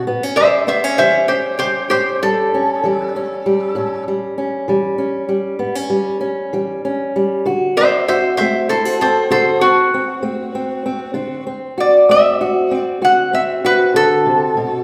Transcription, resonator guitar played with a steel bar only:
0.36 C5 E5
0.68 C5 E5
0.98 C5 E5
1.28 G4 C5
1.59 G4 C5
1.90 G4 C5
2.23 A4
7.77 C5 E5
8.08 C5 E5
8.37 C5 E5
8.69 A4 C5
9.01 A4 C5
9.31 A4 C5
9.61 F#4
11.80 D5
12.11 E5
12.77 D5
13.04 F#5
13.35 E5
13.66 B4
13.96 A4

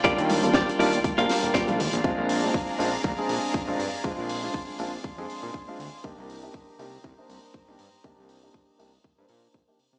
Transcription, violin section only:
Already playing: F4 D5 F5 G5
2.04 G#4 A#5
4.04 C6
6.04 G4 C5 A#5 D#6

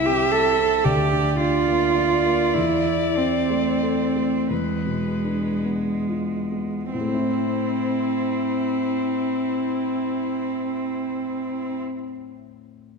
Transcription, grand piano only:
Already playing: C2 C3 E4
0.07 C4
0.32 A4
0.60 C4
0.85 D2
1.13 D3
1.40 D4
1.66 A#3
1.95 F4
2.25 A#3
2.55 E2
2.86 E3
3.17 C4
3.50 A3
3.82 A4
4.16 A3
4.50 E2
4.86 B2
5.25 D4
5.65 B3
6.09 F4
6.52 B3
6.94 A2
7.01 A3
7.07 C4
7.15 E4
7.22 C5

